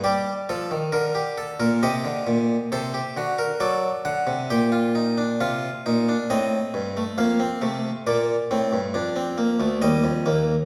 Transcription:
<<
  \new Staff \with { instrumentName = "Harpsichord" } { \time 3/4 \key c \minor \tempo 4 = 68 << { d''2 ees''4 | c''4 d''8 fis''8 g''4 | f''4 ees''4 f''4 | d''2 ees''4 | } \\ { g'8 a'8 bes'16 g'16 a'16 bes'16 g'4 | a'16 g'16 fis'16 bes'16 a'4 g'16 f'16 ees'16 d'16 | f'8 ees'16 d'16 c'8. a16 bes16 c'16 a8 | bes8 c'8 d'16 c'16 bes16 a16 g8 bes8 | } >> }
  \new Staff \with { instrumentName = "Harpsichord" } { \clef bass \time 3/4 \key c \minor g8 f16 ees16 d8. bes,16 c16 d16 bes,8 | c8 d8 fis8 d16 c16 bes,4 | c8 bes,8 a,8 g,8 f,8 c8 | bes,8 a,16 g,16 f,8. d,16 ees,16 f,16 ees,8 | }
>>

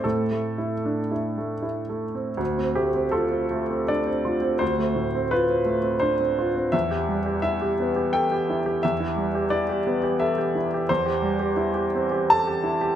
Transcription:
\new Staff \with { instrumentName = "Grand piano" } { \time 3/4 \key d \dorian \tempo 4 = 85 << { a'2 r4 | r8 g'8 a'4 d''4 | c''4 b'4 c''4 | e''4 e''4 g''4 |
e''4 d''4 e''8 r8 | c''2 a''4 | } \\ { \tuplet 3/2 { <a, c'>8 a8 e'8 d'8 e'8 a8 e'8 a8 c'8 } | d,16 c'16 a16 c'16 f'16 c'16 a16 c'16 d'16 c'16 f'16 c'16 | d,16 a16 a,16 c'16 f'16 c'16 a16 c'16 d'16 c'16 f'16 c'16 | e,16 g'16 g16 g'16 e'16 g'16 b16 g'16 a'16 g'16 e'16 g'16 |
e,16 e'16 g16 g'16 e'16 g'16 b16 g'16 a'16 g'16 e'16 g'16 | e,16 g'16 g16 g'16 e'16 g'16 c'16 g'16 a'16 g'16 e'16 g'16 | } >> }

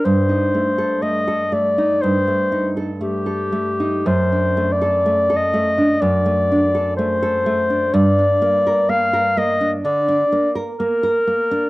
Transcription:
<<
  \new Staff \with { instrumentName = "Clarinet" } { \time 4/4 \key g \minor \tempo 4 = 62 c''4 ees''8 d''8 c''8 r8 g'4 | \tuplet 3/2 { c''4 d''8~ d''8 ees''4 } d''4 c''4 | d''4 f''8 ees''8 d''8 r8 bes'4 | }
  \new Staff \with { instrumentName = "Nylon-string guitar" } { \time 4/4 \key g \minor g,16 ees'16 a16 a'16 a16 a'16 a16 ees'16 g,16 a16 ees'16 a'16 a16 a'16 a16 ees'16 | fis,16 d'16 a16 a'16 a16 a'16 a16 d'16 fis,16 a16 d'16 a'16 a16 a'16 a16 d'16 | g,16 d'16 bes16 bes'16 bes16 bes'16 bes16 d'16 d16 d'16 bes16 bes'16 bes16 bes'16 bes16 d'16 | }
>>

